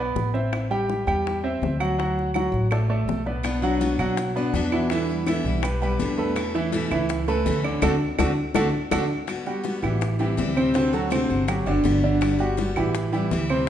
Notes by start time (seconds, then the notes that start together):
Already playing: B1 B3 B4 D5
0.15 A1, high bongo, low bongo
0.34 C4 C5 E5, high bongo
0.53 high bongo, claves
0.71 G3 G4 G5, high bongo
0.90 high bongo
1.07 E2 G3 G4 G5, high bongo, claves
1.27 high bongo
1.44 C4 C5 E5
1.62 D2, high bongo, low bongo
1.80 F#3 F#4 F#5, high bongo, claves
1.98 F#3 F#4 F#5, high bongo
2.19 high bongo
2.34 F#3 F#4 F#5, high bongo, claves
2.52 A1, high bongo
2.71 A3 A4 D5, high bongo, claves
2.90 A3 A4 D5
3.08 B1, high bongo, low bongo
3.26 B3 B4 D5, high bongo
3.43 B2 F#3 B3 D4 F#4, high bongo, claves
3.62 F#3 B3 D4 F#4 F#5, high bongo
3.81 B2 F#3 B3 D4 F#4, high bongo
3.99 B2 F#3 B3 D4 F#4 F#5, high bongo, claves
4.17 muted steel-string acoustic guitar stroke, high bongo
4.36 B3 D4 F#4 B4 D5
4.53 E2 B2 F#3 B3 D4 F#4, high bongo, low bongo
4.72 E3 E4 E5, high bongo, claves
4.90 B2 D3 E3 G3 B3 E4 E5, high bongo
5.08 G3 B3 E4, high bongo
5.26 B2 D3 E3 G3 B3 E4 E5, high bongo, claves
5.44 B1 G3 B3 E4, high bongo
5.63 G3 G4 B4, muted steel-string acoustic guitar stroke, high bongo, claves
5.82 G3 B3 E4 G4 B4
5.99 E2 B2 D3 G3 B3 E4, high bongo, low bongo
6.18 A3 A4 B4, high bongo
6.36 B2 E3 A3 C#4 E4, high bongo, claves
6.54 E3 A3 C#4 E4 E5, high bongo
6.72 B2 E3 A3 C#4 E4, high bongo
6.90 C#2 E3 A3 C#4 E4 E5, high bongo, claves
7.09 muted steel-string acoustic guitar stroke, high bongo
7.28 A3 C#4 E4 A4 B4
7.45 D2 B2 E3 A3 C#4 E4, high bongo, low bongo
7.64 D3 D4 D5, high bongo, claves
7.82 D2 A3 C4 D4 F#4 A4, high bongo, claves
8.18 D2 A3 C4 D4 F#4 A4, high bongo, claves
8.55 D2 A3 C4 D4 F#4 A4, high bongo, claves
8.91 D2 A3 C4 D4 F#4 A4, high bongo, claves
9.27 G3 B3 F#4, high bongo, claves
9.46 G3 B3 F#4 G4, high bongo
9.63 G3 B3 F#4, high bongo
9.82 A1 E3 B3 E4 F#4 G4, high bongo, claves
10.01 muted steel-string acoustic guitar stroke, high bongo
10.19 E3 G3 C4 E4 G4
10.37 D2 E3 G3 C4 E4, high bongo, low bongo
10.56 C3 C4 C5, high bongo, claves
10.74 C3 D3 A3 C4 F#4 C5, high bongo
10.93 F#3 A3 C4 F#4 A4, high bongo
11.10 C3 D3 A3 C4 F#4 C5, high bongo, claves
11.29 G1 A3 C4 F#4, high bongo
11.48 F#3 F#4 G4, muted steel-string acoustic guitar stroke, high bongo, claves
11.66 F#1 D3 B3 D4 F#4 D5
11.84 G1 G3 B3 F#4, high bongo, low bongo
12.03 D3 D4 D5, high bongo
12.21 G3 B3 F#4, high bongo, claves
12.39 G3 B3 F#4 G4, high bongo
12.57 G3 B3 F#4, high bongo
12.76 A1 E3 B3 E4 F#4 G4, high bongo, claves
12.94 muted steel-string acoustic guitar stroke, high bongo
13.12 E3 G3 C4 E4 G4
13.31 D2 E3 G3 C4 E4, high bongo, low bongo
13.50 C3 C4 C5, high bongo, claves